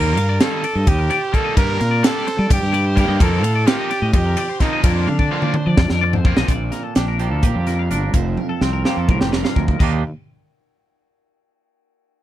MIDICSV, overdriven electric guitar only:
0, 0, Header, 1, 3, 480
1, 0, Start_track
1, 0, Tempo, 467290
1, 1616, Time_signature, 7, 3, 24, 8
1, 5701, Tempo, 473560
1, 12470, End_track
2, 0, Start_track
2, 0, Title_t, "Overdriven electric guitar"
2, 0, Program_c, 0, 29
2, 0, Note_on_c, 0, 51, 77
2, 0, Note_on_c, 0, 55, 91
2, 0, Note_on_c, 0, 58, 81
2, 0, Note_on_c, 0, 63, 97
2, 168, Note_off_c, 0, 63, 0
2, 175, Note_off_c, 0, 55, 0
2, 176, Note_off_c, 0, 58, 0
2, 178, Note_off_c, 0, 51, 0
2, 418, Note_on_c, 0, 51, 89
2, 426, Note_on_c, 0, 55, 93
2, 426, Note_on_c, 0, 58, 91
2, 430, Note_on_c, 0, 63, 89
2, 651, Note_off_c, 0, 63, 0
2, 655, Note_off_c, 0, 55, 0
2, 655, Note_off_c, 0, 58, 0
2, 658, Note_off_c, 0, 51, 0
2, 1366, Note_on_c, 0, 51, 90
2, 1373, Note_on_c, 0, 55, 88
2, 1377, Note_on_c, 0, 58, 96
2, 1381, Note_on_c, 0, 63, 102
2, 1599, Note_off_c, 0, 55, 0
2, 1604, Note_off_c, 0, 58, 0
2, 1608, Note_off_c, 0, 51, 0
2, 1612, Note_on_c, 0, 55, 95
2, 1617, Note_on_c, 0, 58, 77
2, 1618, Note_off_c, 0, 63, 0
2, 1623, Note_on_c, 0, 62, 84
2, 1627, Note_on_c, 0, 67, 108
2, 1834, Note_off_c, 0, 67, 0
2, 1837, Note_off_c, 0, 62, 0
2, 1840, Note_off_c, 0, 55, 0
2, 1843, Note_off_c, 0, 58, 0
2, 2091, Note_on_c, 0, 55, 92
2, 2097, Note_on_c, 0, 58, 80
2, 2099, Note_on_c, 0, 62, 89
2, 2100, Note_on_c, 0, 67, 104
2, 2327, Note_off_c, 0, 67, 0
2, 2331, Note_off_c, 0, 62, 0
2, 2332, Note_off_c, 0, 55, 0
2, 2332, Note_off_c, 0, 58, 0
2, 3043, Note_on_c, 0, 55, 91
2, 3045, Note_on_c, 0, 58, 101
2, 3049, Note_on_c, 0, 62, 94
2, 3055, Note_on_c, 0, 67, 112
2, 3274, Note_off_c, 0, 58, 0
2, 3278, Note_off_c, 0, 55, 0
2, 3283, Note_on_c, 0, 53, 89
2, 3286, Note_off_c, 0, 62, 0
2, 3287, Note_on_c, 0, 58, 96
2, 3289, Note_off_c, 0, 67, 0
2, 3290, Note_on_c, 0, 60, 96
2, 3293, Note_on_c, 0, 63, 103
2, 3514, Note_off_c, 0, 63, 0
2, 3515, Note_off_c, 0, 60, 0
2, 3521, Note_off_c, 0, 58, 0
2, 3523, Note_off_c, 0, 53, 0
2, 3767, Note_on_c, 0, 53, 92
2, 3771, Note_on_c, 0, 58, 100
2, 3777, Note_on_c, 0, 60, 92
2, 3781, Note_on_c, 0, 63, 113
2, 3998, Note_off_c, 0, 63, 0
2, 4002, Note_off_c, 0, 58, 0
2, 4004, Note_off_c, 0, 60, 0
2, 4006, Note_off_c, 0, 53, 0
2, 4738, Note_on_c, 0, 53, 93
2, 4744, Note_on_c, 0, 58, 94
2, 4746, Note_on_c, 0, 60, 101
2, 4753, Note_on_c, 0, 63, 97
2, 4963, Note_off_c, 0, 53, 0
2, 4971, Note_off_c, 0, 60, 0
2, 4972, Note_off_c, 0, 58, 0
2, 4975, Note_on_c, 0, 53, 88
2, 4983, Note_off_c, 0, 63, 0
2, 4983, Note_on_c, 0, 60, 97
2, 4984, Note_on_c, 0, 58, 89
2, 4987, Note_on_c, 0, 65, 97
2, 5206, Note_off_c, 0, 60, 0
2, 5206, Note_off_c, 0, 65, 0
2, 5210, Note_off_c, 0, 58, 0
2, 5211, Note_off_c, 0, 53, 0
2, 5456, Note_on_c, 0, 53, 96
2, 5461, Note_on_c, 0, 60, 93
2, 5462, Note_on_c, 0, 58, 99
2, 5467, Note_on_c, 0, 65, 107
2, 5685, Note_off_c, 0, 65, 0
2, 5691, Note_off_c, 0, 60, 0
2, 5694, Note_off_c, 0, 53, 0
2, 5694, Note_off_c, 0, 58, 0
2, 6420, Note_on_c, 0, 53, 87
2, 6425, Note_on_c, 0, 58, 94
2, 6430, Note_on_c, 0, 60, 92
2, 6432, Note_on_c, 0, 65, 96
2, 6657, Note_off_c, 0, 53, 0
2, 6659, Note_off_c, 0, 58, 0
2, 6661, Note_off_c, 0, 60, 0
2, 6663, Note_off_c, 0, 65, 0
2, 12470, End_track
3, 0, Start_track
3, 0, Title_t, "Muted overdriven electric guitar strokes"
3, 180, Note_on_c, 9, 29, 52
3, 283, Note_off_c, 9, 29, 0
3, 663, Note_on_c, 9, 29, 51
3, 766, Note_off_c, 9, 29, 0
3, 898, Note_on_c, 9, 29, 53
3, 1001, Note_off_c, 9, 29, 0
3, 1135, Note_on_c, 9, 29, 57
3, 1237, Note_off_c, 9, 29, 0
3, 1847, Note_on_c, 9, 29, 49
3, 1950, Note_off_c, 9, 29, 0
3, 2339, Note_on_c, 9, 29, 54
3, 2442, Note_off_c, 9, 29, 0
3, 2570, Note_on_c, 9, 29, 50
3, 2673, Note_off_c, 9, 29, 0
3, 2805, Note_on_c, 9, 29, 51
3, 2908, Note_off_c, 9, 29, 0
3, 3526, Note_on_c, 9, 29, 55
3, 3629, Note_off_c, 9, 29, 0
3, 4010, Note_on_c, 9, 29, 53
3, 4113, Note_off_c, 9, 29, 0
3, 4258, Note_on_c, 9, 29, 53
3, 4361, Note_off_c, 9, 29, 0
3, 4492, Note_on_c, 9, 29, 54
3, 4595, Note_off_c, 9, 29, 0
3, 5218, Note_on_c, 9, 29, 53
3, 5321, Note_off_c, 9, 29, 0
3, 5698, Note_on_c, 9, 29, 51
3, 5799, Note_off_c, 9, 29, 0
3, 5940, Note_on_c, 9, 29, 52
3, 6042, Note_off_c, 9, 29, 0
3, 6185, Note_on_c, 9, 29, 55
3, 6287, Note_off_c, 9, 29, 0
3, 12470, End_track
0, 0, End_of_file